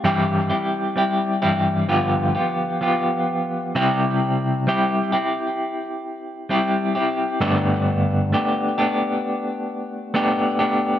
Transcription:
X:1
M:4/4
L:1/8
Q:1/4=65
K:C
V:1 name="Clean electric guitar"
[G,,E,G,CEG] [G,CEG] [G,CEG] [G,,E,G,CEG] [G,,D,F,B,FG] [F,B,FG] [F,B,FG]2 | [C,G,CEG]2 [G,CEG] [CEG]3 [G,CEG] [CEG] | [G,,D,A,B,DG]2 [A,B,DG] [A,B,DG]3 [A,B,DG] [A,B,DG] |]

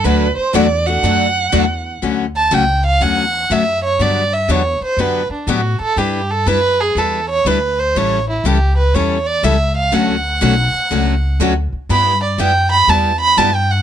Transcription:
X:1
M:4/4
L:1/16
Q:"Swing" 1/4=121
K:Dmix
V:1 name="Violin"
z16 | [K:D] z2 a2 g2 =f2 ^f4 e2 c2 | d2 e2 c2 =c2 B2 D2 F2 A2 | G2 A2 B2 ^G2 A2 c2 B2 =c2 |
c2 E2 G2 B2 c2 d2 e2 =f2 | f12 z4 | b2 d2 g2 b2 a2 b2 (3a2 g2 f2 |]
V:2 name="Violin"
B2 c2 d2 f8- f z | [K:D] z16 | z16 | z16 |
z16 | z16 | z16 |]
V:3 name="Steel-string acoustic guitar"
[D,A,DFA]2 z2 [D,A,DFA]2 z2 [D,A,DFA]2 z2 [D,A,DFA]2 z2 | [K:D] z16 | z16 | z16 |
z16 | [D,A,CFA]2 z2 [D,A,CFA]2 z2 [D,A,CFA]2 z2 [D,A,CFA]2 z2 | [G,B,EG]2 z2 [G,B,EG]2 z2 [G,B,EG]2 z2 [G,B,EG]2 z2 |]
V:4 name="Steel-string acoustic guitar"
[D,F,A,DF]2 z2 [D,F,A,DF]2 [A,DF]2 [D,F,A,DF]2 z2 [D,F,A,DF]2 z2 | [K:D] [D,F,A,CF]2 z2 [D,F,A,CF]2 z2 [D,F,A,CF]2 z2 [D,F,A,CF]2 z2 | [D,F,B,DG]2 z2 [D,F,B,DG]2 z2 [D,F,B,DG]2 z2 [D,F,B,DG]2 z2 | [G,DEB]2 z2 [G,DEB]2 z2 [G,DEB]2 z2 [G,DEB]2 z2 |
[E,G,CEA]2 z2 [E,G,CEA]2 z2 [E,G,CEA]2 z2 [E,G,CEA]2 z2 | [D,F,A,CF]2 z2 [D,F,A,CF]2 z2 [D,F,A,CF]2 z2 [D,F,A,CF]2 z2 | [G,B,EG]2 z2 [G,B,EG]2 z2 [G,B,EG]2 z2 [G,B,EG]2 z2 |]
V:5 name="Upright bass" clef=bass
D,,2 z2 E,,4 F,,4 E,,4 | [K:D] D,,4 C,,4 E,,4 F,,4 | G,,4 E,,2 z2 F,,2 z2 A,,2 z2 | G,,4 F,,4 E,,4 D,,4 |
A,,,4 C,,4 E,,4 C,,4 | D,,4 B,,,2 z2 C,,4 D,,2 z2 | G,,4 F,,4 E,,4 G,,4 |]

